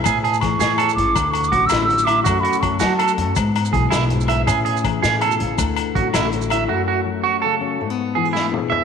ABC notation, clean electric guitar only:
X:1
M:12/8
L:1/8
Q:3/8=108
K:A
V:1 name="Clean electric guitar"
G G z G A z3 F E z e | F F z F A z3 G E z e | G G z G A z3 F E z e | F F z F A z3 G E z e |]